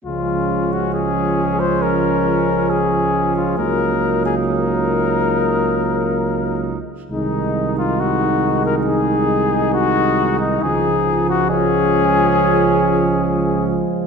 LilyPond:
<<
  \new Staff \with { instrumentName = "Cornet" } { \time 4/4 \key des \major \tempo 4 = 68 f'8. ges'16 aes'8. c''16 bes'4 aes'8. f'16 | bes'8. aes'16 bes'2~ bes'8 r8 | ees'8. f'16 ges'8. bes'16 aes'4 ges'8. ees'16 | aes'8. ges'16 aes'2~ aes'8 r8 | }
  \new Staff \with { instrumentName = "Trumpet" } { \time 4/4 \key des \major des'1 | ees'2.~ ees'8 r8 | ees'1~ | ees'4 des'2~ des'8 r8 | }
  \new Staff \with { instrumentName = "French horn" } { \clef bass \time 4/4 \key des \major aes1 | bes2.~ bes8 r8 | aes1 | aes1 | }
  \new Staff \with { instrumentName = "Euphonium" } { \clef bass \time 4/4 \key des \major f1 | ges2.~ ges8 r8 | ees1 | f1 | }
  \new Staff \with { instrumentName = "Tuba" } { \clef bass \time 4/4 \key des \major des,1 | des,2.~ des,8 r8 | c,1 | des,2.~ des,8 r8 | }
>>